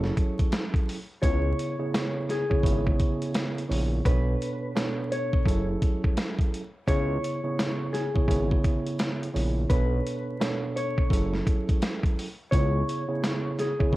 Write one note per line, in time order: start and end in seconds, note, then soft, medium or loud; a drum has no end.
0.00 0.11 F#1 loud
0.00 0.97 F#3 loud
0.00 0.97 C#4 medium
0.00 0.97 E4 medium
0.00 0.97 G#4 medium
0.00 0.97 A4 loud
0.00 snare soft
0.17 kick loud
0.17 closed hi-hat medium
0.39 kick loud
0.39 closed hi-hat medium
0.52 snare loud
0.52 closed hi-hat medium
0.74 kick loud
0.74 closed hi-hat soft
0.89 open hi-hat medium
1.22 1.53 C#2 loud
1.22 1.75 C#3 medium
1.22 1.75 B3 medium
1.22 1.75 E4 medium
1.22 1.75 G#4 medium
1.22 2.24 C#5 loud
1.22 1.75 C#5 loud
1.22 kick loud
1.22 closed hi-hat loud
1.59 closed hi-hat medium
1.79 2.43 C#3 loud
1.79 2.43 B3 medium
1.79 2.43 E4 medium
1.79 2.43 G#4 medium
1.79 2.43 C#5 loud
1.94 snare loud
1.94 closed hi-hat medium
2.29 2.83 G#4 medium
2.29 snare soft
2.29 closed hi-hat medium
2.49 2.62 C#3 loud
2.49 2.62 B3 medium
2.49 2.62 E4 medium
2.49 2.62 G#4 medium
2.49 2.62 C#5 loud
2.49 kick medium
2.63 2.94 G#1 loud
2.63 3.63 C#3 medium
2.63 3.63 B3 medium
2.63 3.63 E4 medium
2.63 3.63 G#4 medium
2.63 3.63 C#5 loud
2.63 kick loud
2.63 closed hi-hat loud
2.87 kick medium
3.00 kick loud
3.00 closed hi-hat medium
3.22 closed hi-hat medium
3.34 snare loud
3.34 closed hi-hat loud
3.58 closed hi-hat soft
3.68 4.00 A#1 medium
3.68 4.02 C#3 medium
3.68 4.02 B3 medium
3.68 4.02 E4 medium
3.68 4.03 G#4 medium
3.68 4.03 C#5 medium
3.68 open hi-hat medium
4.05 4.35 B1 loud
4.05 4.71 B2 loud
4.05 4.71 B3 medium
4.05 4.71 D4 medium
4.05 4.72 A4 medium
4.05 5.07 B4 medium
4.05 4.72 C#5 loud
4.05 kick loud
4.05 closed hi-hat loud
4.42 closed hi-hat medium
4.75 5.46 B2 medium
4.75 5.46 B3 medium
4.75 5.46 D4 medium
4.75 5.46 A4 medium
4.75 5.46 C#5 loud
4.75 snare loud
4.75 closed hi-hat medium
5.12 5.65 C#5 medium
5.12 closed hi-hat medium
5.33 kick medium
5.45 5.76 F#1 loud
5.45 6.62 F#3 loud
5.45 6.62 C#4 medium
5.45 6.62 E4 medium
5.45 6.62 G#4 medium
5.45 6.62 A4 loud
5.45 kick medium
5.45 closed hi-hat loud
5.82 kick loud
5.82 closed hi-hat medium
6.04 kick loud
6.17 snare loud
6.17 closed hi-hat medium
6.39 kick loud
6.39 closed hi-hat soft
6.54 closed hi-hat medium
6.87 7.18 C#2 loud
6.87 7.39 C#3 medium
6.87 7.39 B3 medium
6.87 7.39 E4 medium
6.87 7.40 G#4 medium
6.87 7.89 C#5 loud
6.87 7.40 C#5 loud
6.87 kick loud
6.87 closed hi-hat loud
7.24 closed hi-hat medium
7.43 8.08 C#3 loud
7.43 8.08 B3 medium
7.43 8.08 E4 medium
7.43 8.08 G#4 medium
7.43 8.08 C#5 loud
7.59 snare loud
7.59 closed hi-hat medium
7.93 8.47 G#4 medium
7.93 snare soft
7.93 closed hi-hat medium
8.14 8.26 C#3 loud
8.14 8.26 B3 medium
8.14 8.26 E4 medium
8.14 8.27 G#4 medium
8.14 8.27 C#5 loud
8.14 kick loud
8.27 8.59 G#1 loud
8.27 9.27 C#3 medium
8.27 9.27 B3 medium
8.27 9.28 E4 medium
8.27 9.28 G#4 medium
8.27 9.28 C#5 loud
8.27 kick medium
8.27 closed hi-hat loud
8.51 kick medium
8.64 kick loud
8.64 closed hi-hat medium
8.87 closed hi-hat medium
8.99 snare loud
8.99 closed hi-hat loud
9.23 closed hi-hat soft
9.33 9.65 A#1 medium
9.33 9.67 C#3 medium
9.33 9.67 B3 medium
9.33 9.67 E4 medium
9.33 9.67 G#4 medium
9.33 9.68 C#5 medium
9.33 open hi-hat medium
9.69 10.00 B1 loud
9.69 10.36 B2 medium
9.69 10.36 B3 medium
9.69 10.36 D4 medium
9.69 10.36 A4 medium
9.69 10.72 B4 medium
9.69 10.36 C#5 loud
9.69 kick loud
9.69 closed hi-hat loud
10.07 closed hi-hat medium
10.40 11.11 B2 medium
10.40 11.11 B3 medium
10.40 11.11 D4 medium
10.40 11.10 A4 medium
10.40 11.11 C#5 loud
10.40 snare loud
10.40 closed hi-hat medium
10.76 11.30 C#5 medium
10.76 closed hi-hat medium
10.98 kick medium
11.10 11.41 F#1 loud
11.10 12.26 F#3 loud
11.10 12.26 C#4 medium
11.10 12.27 E4 medium
11.10 12.27 G#4 medium
11.10 12.27 A4 loud
11.10 kick loud
11.10 closed hi-hat loud
11.34 snare soft
11.47 kick loud
11.47 closed hi-hat medium
11.69 kick loud
11.69 closed hi-hat medium
11.82 snare loud
11.82 closed hi-hat medium
12.03 kick loud
12.03 closed hi-hat soft
12.19 open hi-hat medium
12.51 12.83 C#2 loud
12.51 13.04 C#3 medium
12.51 13.04 B3 medium
12.51 13.04 E4 medium
12.51 13.04 G#4 medium
12.51 13.54 C#5 loud
12.51 13.04 C#5 loud
12.51 kick loud
12.51 closed hi-hat loud
12.89 closed hi-hat medium
13.08 13.72 C#3 loud
13.08 13.72 B3 medium
13.08 13.72 E4 medium
13.08 13.73 G#4 medium
13.08 13.73 C#5 loud
13.24 snare loud
13.24 closed hi-hat medium
13.59 13.96 G#4 medium
13.59 snare soft
13.59 closed hi-hat medium
13.79 13.90 C#3 loud
13.79 13.91 B3 medium
13.79 13.91 E4 medium
13.79 13.91 G#4 medium
13.79 13.91 C#5 loud
13.79 kick loud
13.92 13.96 G#1 loud
13.92 13.96 C#3 medium
13.92 13.96 B3 medium
13.92 13.96 E4 medium
13.92 13.96 G#4 medium
13.92 13.96 C#5 loud
13.92 kick medium